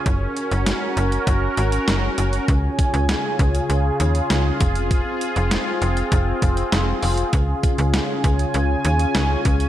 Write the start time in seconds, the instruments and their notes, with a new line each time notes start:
Already playing: analog synth pad C#4
0.06 fm bass F#1, analog synth pad F#4 A#4, kick, closed hi-hat
0.37 closed hi-hat
0.51 fm bass F#1, closed hi-hat
0.66 snare, closed hi-hat
0.97 fm bass F#1, closed hi-hat
1.12 closed hi-hat
1.27 fm bass F#1, kick, closed hi-hat
1.57 fm bass G#1, closed hi-hat
1.72 closed hi-hat
1.88 fm bass F#1, snare, closed hi-hat
2.18 fm bass F#1, closed hi-hat
2.33 closed hi-hat
2.48 fm bass C#2, analog synth pad C#3 F4 G#4 G#5, kick, closed hi-hat
2.79 kick, closed hi-hat
2.94 fm bass C#2, closed hi-hat
3.09 snare, closed hi-hat
3.39 fm bass C#2, kick, closed hi-hat
3.55 closed hi-hat
3.70 fm bass C#2, closed hi-hat
4.00 fm bass D#2, closed hi-hat
4.15 closed hi-hat
4.30 fm bass C#2, snare, closed hi-hat
4.60 fm bass F1, analog synth pad C4, kick, closed hi-hat
4.75 closed hi-hat
4.91 kick, closed hi-hat
5.21 closed hi-hat
5.36 fm bass F1, closed hi-hat
5.51 snare, closed hi-hat
5.82 fm bass F1, closed hi-hat
5.97 closed hi-hat
6.12 fm bass F1, kick, closed hi-hat
6.42 fm bass F1, kick, closed hi-hat
6.57 closed hi-hat
6.72 fm bass F1, snare, closed hi-hat
7.03 fm bass F1, open hi-hat
7.17 closed hi-hat
7.33 fm bass C#2, analog synth pad C#3 C#4 G#5, kick, closed hi-hat
7.63 kick, closed hi-hat
7.78 fm bass C#2, closed hi-hat
7.94 snare, closed hi-hat
8.24 fm bass C#2, kick, closed hi-hat
8.39 closed hi-hat
8.54 fm bass C#2, closed hi-hat
8.85 fm bass D#2, closed hi-hat
8.99 closed hi-hat
9.15 fm bass C#2, snare, closed hi-hat
9.45 fm bass C#2, kick, closed hi-hat
9.60 closed hi-hat